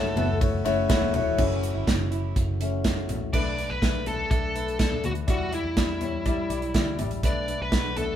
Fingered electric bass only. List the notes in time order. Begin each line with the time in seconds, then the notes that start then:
Already playing: F#1
0.16 F#1
0.65 F#1
1.14 E1
1.39 F#1
1.75 G1
1.88 F#1
2.36 F#1
3.09 A1
3.34 B1
3.70 B1
3.82 B1
4.31 B1
5.05 D2
5.28 E2
5.64 E2
5.77 E2
6.50 B1
6.75 D2
6.99 A1
7.23 B1
7.60 B1
7.72 B1